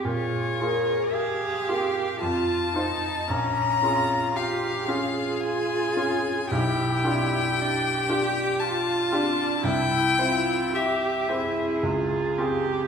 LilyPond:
<<
  \new Staff \with { instrumentName = "Violin" } { \time 3/4 \key bes \dorian \tempo 4 = 56 des''4 f''4 a''4 | bes''4 f''4 aes''4 | g''2 a''4 | g''4 e''4 r4 | }
  \new Staff \with { instrumentName = "Viola" } { \time 3/4 \key bes \dorian aes'4 g'4 f'8 ees'8 | des'4 f'8 aes'4. | g'4 g'4 f'4 | e'4 g'8 aes'4. | }
  \new Staff \with { instrumentName = "Cello" } { \time 3/4 \key bes \dorian f'8 bes'8 aes'8 g'8 f'8 ees'8 | des'8 f'8 g'8 f'4. | e'4 d'8 g'8 f'8 d'8 | e'8 f'8 g'8 e'8 f'8 g'8 | }
  \new Staff \with { instrumentName = "Grand piano" } { \time 3/4 \key bes \dorian bes,8 <bes f' aes'>4 <bes f' aes'>8 f,8 <ees' f' c''>8 | bes,,8 <des' f' aes'>4 <des' f' aes'>4 <des' f' aes'>8 | b,,8 <d' f' g'>4 <d' f' g'>4 <d' f' g'>8 | c,8 <c' e' c''>4 <c' e' c''>8 des,8 <c' f' aes'>8 | }
>>